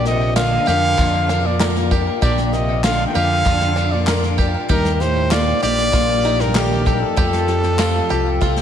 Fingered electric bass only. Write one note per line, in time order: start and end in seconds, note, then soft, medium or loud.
0.00 0.56 A#1 loud
0.68 0.95 F2 medium
0.98 2.07 F2 loud
2.22 3.04 A#1 loud
3.15 3.42 F2 medium
3.46 4.55 F2 loud
4.70 5.51 D#2 loud
5.63 5.90 A#1 medium
5.94 7.03 A#1 loud
7.17 7.99 F2 loud
8.11 8.38 C2 medium
8.42 8.62 C2 loud